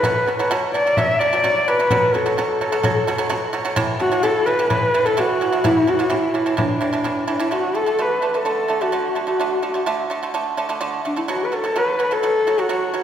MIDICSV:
0, 0, Header, 1, 4, 480
1, 0, Start_track
1, 0, Tempo, 468750
1, 37, Time_signature, 4, 2, 24, 8
1, 13345, End_track
2, 0, Start_track
2, 0, Title_t, "Horsehead fiddle"
2, 0, Program_c, 0, 110
2, 0, Note_on_c, 0, 71, 87
2, 476, Note_off_c, 0, 71, 0
2, 750, Note_on_c, 0, 74, 83
2, 989, Note_on_c, 0, 76, 95
2, 1005, Note_off_c, 0, 74, 0
2, 1224, Note_on_c, 0, 74, 94
2, 1240, Note_off_c, 0, 76, 0
2, 1715, Note_on_c, 0, 71, 101
2, 1731, Note_off_c, 0, 74, 0
2, 2196, Note_on_c, 0, 69, 82
2, 2211, Note_off_c, 0, 71, 0
2, 3632, Note_off_c, 0, 69, 0
2, 4107, Note_on_c, 0, 66, 102
2, 4334, Note_on_c, 0, 69, 95
2, 4349, Note_off_c, 0, 66, 0
2, 4563, Note_on_c, 0, 71, 91
2, 4579, Note_off_c, 0, 69, 0
2, 4810, Note_off_c, 0, 71, 0
2, 4816, Note_on_c, 0, 71, 90
2, 5172, Note_on_c, 0, 69, 91
2, 5187, Note_off_c, 0, 71, 0
2, 5310, Note_on_c, 0, 66, 97
2, 5326, Note_off_c, 0, 69, 0
2, 5795, Note_on_c, 0, 64, 100
2, 5810, Note_off_c, 0, 66, 0
2, 6039, Note_on_c, 0, 66, 88
2, 6055, Note_off_c, 0, 64, 0
2, 6295, Note_on_c, 0, 64, 79
2, 6311, Note_off_c, 0, 66, 0
2, 6760, Note_off_c, 0, 64, 0
2, 6777, Note_on_c, 0, 62, 76
2, 7440, Note_off_c, 0, 62, 0
2, 7468, Note_on_c, 0, 62, 74
2, 7577, Note_on_c, 0, 64, 75
2, 7593, Note_off_c, 0, 62, 0
2, 7703, Note_on_c, 0, 66, 84
2, 7719, Note_off_c, 0, 64, 0
2, 7956, Note_on_c, 0, 69, 83
2, 7972, Note_off_c, 0, 66, 0
2, 8207, Note_on_c, 0, 71, 77
2, 8222, Note_off_c, 0, 69, 0
2, 8483, Note_off_c, 0, 71, 0
2, 8483, Note_on_c, 0, 71, 53
2, 8563, Note_on_c, 0, 69, 84
2, 8578, Note_off_c, 0, 71, 0
2, 9043, Note_on_c, 0, 66, 75
2, 9059, Note_off_c, 0, 69, 0
2, 9517, Note_off_c, 0, 66, 0
2, 9526, Note_on_c, 0, 66, 67
2, 9966, Note_off_c, 0, 66, 0
2, 11325, Note_on_c, 0, 62, 73
2, 11442, Note_on_c, 0, 64, 62
2, 11458, Note_off_c, 0, 62, 0
2, 11559, Note_off_c, 0, 64, 0
2, 11574, Note_on_c, 0, 66, 80
2, 11726, Note_on_c, 0, 71, 49
2, 11741, Note_off_c, 0, 66, 0
2, 11812, Note_on_c, 0, 69, 88
2, 11827, Note_off_c, 0, 71, 0
2, 12058, Note_on_c, 0, 71, 80
2, 12074, Note_off_c, 0, 69, 0
2, 12413, Note_on_c, 0, 69, 89
2, 12428, Note_off_c, 0, 71, 0
2, 12901, Note_on_c, 0, 66, 87
2, 12917, Note_off_c, 0, 69, 0
2, 13345, Note_off_c, 0, 66, 0
2, 13345, End_track
3, 0, Start_track
3, 0, Title_t, "Pipa"
3, 0, Program_c, 1, 105
3, 38, Note_on_c, 1, 47, 94
3, 48, Note_on_c, 1, 54, 101
3, 229, Note_off_c, 1, 47, 0
3, 234, Note_off_c, 1, 54, 0
3, 281, Note_on_c, 1, 47, 64
3, 291, Note_on_c, 1, 54, 71
3, 375, Note_off_c, 1, 47, 0
3, 380, Note_off_c, 1, 54, 0
3, 403, Note_on_c, 1, 47, 76
3, 409, Note_on_c, 1, 54, 89
3, 495, Note_off_c, 1, 47, 0
3, 499, Note_off_c, 1, 54, 0
3, 520, Note_on_c, 1, 47, 115
3, 528, Note_on_c, 1, 54, 112
3, 711, Note_off_c, 1, 47, 0
3, 712, Note_off_c, 1, 54, 0
3, 761, Note_on_c, 1, 47, 67
3, 770, Note_on_c, 1, 54, 84
3, 854, Note_off_c, 1, 47, 0
3, 859, Note_off_c, 1, 54, 0
3, 887, Note_on_c, 1, 47, 66
3, 894, Note_on_c, 1, 54, 72
3, 977, Note_off_c, 1, 47, 0
3, 979, Note_off_c, 1, 54, 0
3, 1000, Note_on_c, 1, 47, 80
3, 1009, Note_on_c, 1, 54, 87
3, 1190, Note_off_c, 1, 47, 0
3, 1192, Note_off_c, 1, 54, 0
3, 1235, Note_on_c, 1, 47, 69
3, 1241, Note_on_c, 1, 54, 91
3, 1331, Note_off_c, 1, 47, 0
3, 1334, Note_off_c, 1, 54, 0
3, 1360, Note_on_c, 1, 47, 79
3, 1368, Note_on_c, 1, 54, 74
3, 1453, Note_off_c, 1, 47, 0
3, 1457, Note_off_c, 1, 54, 0
3, 1472, Note_on_c, 1, 47, 88
3, 1477, Note_on_c, 1, 54, 100
3, 1665, Note_off_c, 1, 47, 0
3, 1668, Note_off_c, 1, 54, 0
3, 1719, Note_on_c, 1, 47, 76
3, 1725, Note_on_c, 1, 54, 70
3, 1813, Note_off_c, 1, 47, 0
3, 1816, Note_off_c, 1, 54, 0
3, 1837, Note_on_c, 1, 47, 67
3, 1842, Note_on_c, 1, 54, 71
3, 1932, Note_off_c, 1, 47, 0
3, 1934, Note_off_c, 1, 54, 0
3, 1954, Note_on_c, 1, 47, 92
3, 1959, Note_on_c, 1, 54, 111
3, 2146, Note_off_c, 1, 47, 0
3, 2149, Note_off_c, 1, 54, 0
3, 2193, Note_on_c, 1, 47, 64
3, 2199, Note_on_c, 1, 54, 72
3, 2289, Note_off_c, 1, 47, 0
3, 2292, Note_off_c, 1, 54, 0
3, 2311, Note_on_c, 1, 47, 73
3, 2317, Note_on_c, 1, 54, 84
3, 2408, Note_off_c, 1, 47, 0
3, 2411, Note_off_c, 1, 54, 0
3, 2436, Note_on_c, 1, 47, 82
3, 2444, Note_on_c, 1, 54, 97
3, 2627, Note_off_c, 1, 47, 0
3, 2629, Note_off_c, 1, 54, 0
3, 2674, Note_on_c, 1, 47, 69
3, 2679, Note_on_c, 1, 54, 76
3, 2769, Note_off_c, 1, 47, 0
3, 2772, Note_off_c, 1, 54, 0
3, 2787, Note_on_c, 1, 47, 81
3, 2791, Note_on_c, 1, 54, 96
3, 2886, Note_off_c, 1, 47, 0
3, 2888, Note_off_c, 1, 54, 0
3, 2902, Note_on_c, 1, 47, 91
3, 2912, Note_on_c, 1, 54, 114
3, 3099, Note_off_c, 1, 47, 0
3, 3104, Note_off_c, 1, 54, 0
3, 3147, Note_on_c, 1, 47, 91
3, 3155, Note_on_c, 1, 54, 101
3, 3245, Note_off_c, 1, 47, 0
3, 3250, Note_off_c, 1, 54, 0
3, 3259, Note_on_c, 1, 47, 90
3, 3267, Note_on_c, 1, 54, 98
3, 3361, Note_off_c, 1, 47, 0
3, 3365, Note_off_c, 1, 54, 0
3, 3374, Note_on_c, 1, 47, 99
3, 3379, Note_on_c, 1, 54, 120
3, 3575, Note_off_c, 1, 47, 0
3, 3577, Note_off_c, 1, 54, 0
3, 3613, Note_on_c, 1, 47, 87
3, 3623, Note_on_c, 1, 54, 90
3, 3718, Note_off_c, 1, 47, 0
3, 3723, Note_off_c, 1, 54, 0
3, 3734, Note_on_c, 1, 47, 81
3, 3741, Note_on_c, 1, 54, 92
3, 3838, Note_off_c, 1, 47, 0
3, 3842, Note_off_c, 1, 54, 0
3, 3853, Note_on_c, 1, 45, 119
3, 3863, Note_on_c, 1, 52, 119
3, 4053, Note_off_c, 1, 45, 0
3, 4058, Note_off_c, 1, 52, 0
3, 4091, Note_on_c, 1, 45, 61
3, 4096, Note_on_c, 1, 52, 71
3, 4197, Note_off_c, 1, 45, 0
3, 4199, Note_off_c, 1, 52, 0
3, 4214, Note_on_c, 1, 45, 79
3, 4224, Note_on_c, 1, 52, 82
3, 4318, Note_off_c, 1, 45, 0
3, 4323, Note_off_c, 1, 52, 0
3, 4331, Note_on_c, 1, 45, 101
3, 4341, Note_on_c, 1, 52, 103
3, 4532, Note_off_c, 1, 45, 0
3, 4537, Note_off_c, 1, 52, 0
3, 4570, Note_on_c, 1, 45, 73
3, 4578, Note_on_c, 1, 52, 74
3, 4676, Note_off_c, 1, 45, 0
3, 4679, Note_off_c, 1, 52, 0
3, 4699, Note_on_c, 1, 45, 75
3, 4704, Note_on_c, 1, 52, 84
3, 4800, Note_off_c, 1, 45, 0
3, 4802, Note_off_c, 1, 52, 0
3, 4813, Note_on_c, 1, 45, 83
3, 4817, Note_on_c, 1, 52, 90
3, 5013, Note_off_c, 1, 45, 0
3, 5014, Note_off_c, 1, 52, 0
3, 5061, Note_on_c, 1, 45, 73
3, 5066, Note_on_c, 1, 52, 87
3, 5160, Note_off_c, 1, 45, 0
3, 5163, Note_off_c, 1, 52, 0
3, 5180, Note_on_c, 1, 45, 75
3, 5187, Note_on_c, 1, 52, 76
3, 5280, Note_off_c, 1, 45, 0
3, 5283, Note_off_c, 1, 52, 0
3, 5293, Note_on_c, 1, 45, 95
3, 5301, Note_on_c, 1, 52, 102
3, 5492, Note_off_c, 1, 45, 0
3, 5496, Note_off_c, 1, 52, 0
3, 5541, Note_on_c, 1, 45, 76
3, 5549, Note_on_c, 1, 52, 78
3, 5640, Note_off_c, 1, 45, 0
3, 5642, Note_off_c, 1, 52, 0
3, 5658, Note_on_c, 1, 45, 73
3, 5665, Note_on_c, 1, 52, 71
3, 5758, Note_off_c, 1, 45, 0
3, 5762, Note_off_c, 1, 52, 0
3, 5777, Note_on_c, 1, 45, 100
3, 5783, Note_on_c, 1, 52, 99
3, 5973, Note_off_c, 1, 45, 0
3, 5976, Note_off_c, 1, 52, 0
3, 6015, Note_on_c, 1, 45, 64
3, 6022, Note_on_c, 1, 52, 75
3, 6116, Note_off_c, 1, 45, 0
3, 6120, Note_off_c, 1, 52, 0
3, 6133, Note_on_c, 1, 45, 74
3, 6140, Note_on_c, 1, 52, 83
3, 6230, Note_off_c, 1, 45, 0
3, 6237, Note_off_c, 1, 52, 0
3, 6243, Note_on_c, 1, 45, 90
3, 6249, Note_on_c, 1, 52, 97
3, 6446, Note_off_c, 1, 45, 0
3, 6449, Note_off_c, 1, 52, 0
3, 6493, Note_on_c, 1, 45, 63
3, 6500, Note_on_c, 1, 52, 76
3, 6595, Note_off_c, 1, 45, 0
3, 6598, Note_off_c, 1, 52, 0
3, 6615, Note_on_c, 1, 45, 68
3, 6623, Note_on_c, 1, 52, 71
3, 6716, Note_off_c, 1, 45, 0
3, 6720, Note_off_c, 1, 52, 0
3, 6728, Note_on_c, 1, 45, 87
3, 6738, Note_on_c, 1, 52, 80
3, 6928, Note_off_c, 1, 45, 0
3, 6934, Note_off_c, 1, 52, 0
3, 6970, Note_on_c, 1, 45, 78
3, 6978, Note_on_c, 1, 52, 84
3, 7073, Note_off_c, 1, 45, 0
3, 7078, Note_off_c, 1, 52, 0
3, 7093, Note_on_c, 1, 45, 76
3, 7101, Note_on_c, 1, 52, 77
3, 7195, Note_off_c, 1, 45, 0
3, 7199, Note_off_c, 1, 52, 0
3, 7212, Note_on_c, 1, 45, 88
3, 7220, Note_on_c, 1, 52, 92
3, 7411, Note_off_c, 1, 45, 0
3, 7413, Note_off_c, 1, 52, 0
3, 7450, Note_on_c, 1, 45, 78
3, 7453, Note_on_c, 1, 52, 81
3, 7554, Note_off_c, 1, 45, 0
3, 7554, Note_off_c, 1, 52, 0
3, 7572, Note_on_c, 1, 45, 79
3, 7579, Note_on_c, 1, 52, 95
3, 7675, Note_off_c, 1, 45, 0
3, 7678, Note_off_c, 1, 52, 0
3, 7692, Note_on_c, 1, 50, 74
3, 7699, Note_on_c, 1, 57, 88
3, 7891, Note_off_c, 1, 50, 0
3, 7894, Note_off_c, 1, 57, 0
3, 7931, Note_on_c, 1, 50, 56
3, 7937, Note_on_c, 1, 57, 62
3, 8034, Note_off_c, 1, 50, 0
3, 8037, Note_off_c, 1, 57, 0
3, 8053, Note_on_c, 1, 50, 57
3, 8062, Note_on_c, 1, 57, 67
3, 8155, Note_off_c, 1, 50, 0
3, 8160, Note_off_c, 1, 57, 0
3, 8177, Note_on_c, 1, 50, 71
3, 8185, Note_on_c, 1, 57, 77
3, 8374, Note_off_c, 1, 50, 0
3, 8377, Note_off_c, 1, 57, 0
3, 8417, Note_on_c, 1, 50, 58
3, 8423, Note_on_c, 1, 57, 65
3, 8518, Note_off_c, 1, 50, 0
3, 8520, Note_off_c, 1, 57, 0
3, 8541, Note_on_c, 1, 50, 54
3, 8548, Note_on_c, 1, 57, 62
3, 8640, Note_off_c, 1, 50, 0
3, 8643, Note_off_c, 1, 57, 0
3, 8654, Note_on_c, 1, 50, 66
3, 8661, Note_on_c, 1, 57, 77
3, 8853, Note_off_c, 1, 50, 0
3, 8856, Note_off_c, 1, 57, 0
3, 8892, Note_on_c, 1, 50, 62
3, 8905, Note_on_c, 1, 57, 76
3, 8996, Note_off_c, 1, 50, 0
3, 9002, Note_off_c, 1, 57, 0
3, 9021, Note_on_c, 1, 50, 60
3, 9028, Note_on_c, 1, 57, 71
3, 9120, Note_off_c, 1, 50, 0
3, 9124, Note_off_c, 1, 57, 0
3, 9136, Note_on_c, 1, 50, 74
3, 9144, Note_on_c, 1, 57, 80
3, 9334, Note_off_c, 1, 50, 0
3, 9338, Note_off_c, 1, 57, 0
3, 9373, Note_on_c, 1, 50, 54
3, 9381, Note_on_c, 1, 57, 63
3, 9477, Note_off_c, 1, 50, 0
3, 9481, Note_off_c, 1, 57, 0
3, 9491, Note_on_c, 1, 50, 57
3, 9501, Note_on_c, 1, 57, 58
3, 9596, Note_off_c, 1, 50, 0
3, 9601, Note_off_c, 1, 57, 0
3, 9622, Note_on_c, 1, 50, 71
3, 9633, Note_on_c, 1, 57, 84
3, 9818, Note_off_c, 1, 50, 0
3, 9823, Note_off_c, 1, 57, 0
3, 9856, Note_on_c, 1, 50, 62
3, 9861, Note_on_c, 1, 57, 68
3, 9959, Note_off_c, 1, 50, 0
3, 9962, Note_off_c, 1, 57, 0
3, 9975, Note_on_c, 1, 50, 62
3, 9986, Note_on_c, 1, 57, 62
3, 10079, Note_off_c, 1, 50, 0
3, 10084, Note_off_c, 1, 57, 0
3, 10100, Note_on_c, 1, 50, 95
3, 10106, Note_on_c, 1, 57, 105
3, 10298, Note_off_c, 1, 50, 0
3, 10301, Note_off_c, 1, 57, 0
3, 10341, Note_on_c, 1, 50, 69
3, 10353, Note_on_c, 1, 57, 76
3, 10443, Note_off_c, 1, 50, 0
3, 10448, Note_off_c, 1, 57, 0
3, 10472, Note_on_c, 1, 50, 67
3, 10480, Note_on_c, 1, 57, 74
3, 10568, Note_off_c, 1, 50, 0
3, 10572, Note_off_c, 1, 57, 0
3, 10588, Note_on_c, 1, 50, 82
3, 10593, Note_on_c, 1, 57, 90
3, 10783, Note_off_c, 1, 50, 0
3, 10785, Note_off_c, 1, 57, 0
3, 10828, Note_on_c, 1, 50, 76
3, 10835, Note_on_c, 1, 57, 84
3, 10926, Note_off_c, 1, 50, 0
3, 10930, Note_off_c, 1, 57, 0
3, 10947, Note_on_c, 1, 50, 78
3, 10952, Note_on_c, 1, 57, 82
3, 11047, Note_off_c, 1, 50, 0
3, 11048, Note_off_c, 1, 57, 0
3, 11065, Note_on_c, 1, 50, 88
3, 11070, Note_on_c, 1, 57, 97
3, 11262, Note_off_c, 1, 50, 0
3, 11265, Note_off_c, 1, 57, 0
3, 11314, Note_on_c, 1, 50, 62
3, 11320, Note_on_c, 1, 57, 68
3, 11411, Note_off_c, 1, 50, 0
3, 11413, Note_off_c, 1, 57, 0
3, 11432, Note_on_c, 1, 50, 61
3, 11439, Note_on_c, 1, 57, 68
3, 11529, Note_off_c, 1, 50, 0
3, 11533, Note_off_c, 1, 57, 0
3, 11553, Note_on_c, 1, 47, 87
3, 11562, Note_on_c, 1, 54, 95
3, 11747, Note_off_c, 1, 47, 0
3, 11751, Note_off_c, 1, 54, 0
3, 11795, Note_on_c, 1, 47, 58
3, 11804, Note_on_c, 1, 54, 63
3, 11892, Note_off_c, 1, 47, 0
3, 11896, Note_off_c, 1, 54, 0
3, 11916, Note_on_c, 1, 47, 64
3, 11926, Note_on_c, 1, 54, 67
3, 12012, Note_off_c, 1, 47, 0
3, 12017, Note_off_c, 1, 54, 0
3, 12038, Note_on_c, 1, 47, 79
3, 12045, Note_on_c, 1, 54, 85
3, 12230, Note_off_c, 1, 47, 0
3, 12233, Note_off_c, 1, 54, 0
3, 12277, Note_on_c, 1, 47, 57
3, 12284, Note_on_c, 1, 54, 72
3, 12374, Note_off_c, 1, 47, 0
3, 12377, Note_off_c, 1, 54, 0
3, 12400, Note_on_c, 1, 47, 58
3, 12408, Note_on_c, 1, 54, 65
3, 12495, Note_off_c, 1, 47, 0
3, 12499, Note_off_c, 1, 54, 0
3, 12523, Note_on_c, 1, 47, 69
3, 12528, Note_on_c, 1, 54, 89
3, 12713, Note_off_c, 1, 47, 0
3, 12716, Note_off_c, 1, 54, 0
3, 12768, Note_on_c, 1, 47, 68
3, 12774, Note_on_c, 1, 54, 81
3, 12860, Note_off_c, 1, 47, 0
3, 12863, Note_off_c, 1, 54, 0
3, 12882, Note_on_c, 1, 47, 57
3, 12891, Note_on_c, 1, 54, 76
3, 12977, Note_off_c, 1, 47, 0
3, 12981, Note_off_c, 1, 54, 0
3, 12997, Note_on_c, 1, 47, 74
3, 13001, Note_on_c, 1, 54, 96
3, 13191, Note_off_c, 1, 47, 0
3, 13193, Note_off_c, 1, 54, 0
3, 13246, Note_on_c, 1, 47, 67
3, 13252, Note_on_c, 1, 54, 70
3, 13339, Note_off_c, 1, 47, 0
3, 13342, Note_off_c, 1, 54, 0
3, 13345, End_track
4, 0, Start_track
4, 0, Title_t, "Frame drum"
4, 33, Note_on_c, 9, 64, 59
4, 136, Note_off_c, 9, 64, 0
4, 273, Note_on_c, 9, 64, 47
4, 375, Note_off_c, 9, 64, 0
4, 394, Note_on_c, 9, 64, 21
4, 496, Note_off_c, 9, 64, 0
4, 512, Note_on_c, 9, 64, 52
4, 614, Note_off_c, 9, 64, 0
4, 759, Note_on_c, 9, 64, 20
4, 861, Note_off_c, 9, 64, 0
4, 994, Note_on_c, 9, 64, 68
4, 1096, Note_off_c, 9, 64, 0
4, 1359, Note_on_c, 9, 64, 24
4, 1461, Note_off_c, 9, 64, 0
4, 1474, Note_on_c, 9, 64, 57
4, 1576, Note_off_c, 9, 64, 0
4, 1951, Note_on_c, 9, 64, 74
4, 2053, Note_off_c, 9, 64, 0
4, 2197, Note_on_c, 9, 64, 57
4, 2299, Note_off_c, 9, 64, 0
4, 2310, Note_on_c, 9, 64, 22
4, 2413, Note_off_c, 9, 64, 0
4, 2429, Note_on_c, 9, 64, 53
4, 2532, Note_off_c, 9, 64, 0
4, 2668, Note_on_c, 9, 64, 23
4, 2771, Note_off_c, 9, 64, 0
4, 2905, Note_on_c, 9, 64, 73
4, 3008, Note_off_c, 9, 64, 0
4, 3259, Note_on_c, 9, 64, 23
4, 3362, Note_off_c, 9, 64, 0
4, 3385, Note_on_c, 9, 64, 54
4, 3487, Note_off_c, 9, 64, 0
4, 3855, Note_on_c, 9, 64, 68
4, 3958, Note_off_c, 9, 64, 0
4, 4098, Note_on_c, 9, 64, 59
4, 4200, Note_off_c, 9, 64, 0
4, 4218, Note_on_c, 9, 64, 26
4, 4321, Note_off_c, 9, 64, 0
4, 4336, Note_on_c, 9, 64, 51
4, 4438, Note_off_c, 9, 64, 0
4, 4580, Note_on_c, 9, 64, 23
4, 4683, Note_off_c, 9, 64, 0
4, 4818, Note_on_c, 9, 64, 61
4, 4920, Note_off_c, 9, 64, 0
4, 5186, Note_on_c, 9, 64, 23
4, 5288, Note_off_c, 9, 64, 0
4, 5306, Note_on_c, 9, 64, 59
4, 5409, Note_off_c, 9, 64, 0
4, 5781, Note_on_c, 9, 64, 78
4, 5884, Note_off_c, 9, 64, 0
4, 6026, Note_on_c, 9, 64, 51
4, 6129, Note_off_c, 9, 64, 0
4, 6149, Note_on_c, 9, 64, 25
4, 6251, Note_off_c, 9, 64, 0
4, 6261, Note_on_c, 9, 64, 64
4, 6363, Note_off_c, 9, 64, 0
4, 6505, Note_on_c, 9, 64, 25
4, 6608, Note_off_c, 9, 64, 0
4, 6741, Note_on_c, 9, 64, 71
4, 6844, Note_off_c, 9, 64, 0
4, 7100, Note_on_c, 9, 64, 22
4, 7202, Note_off_c, 9, 64, 0
4, 7215, Note_on_c, 9, 64, 54
4, 7317, Note_off_c, 9, 64, 0
4, 13345, End_track
0, 0, End_of_file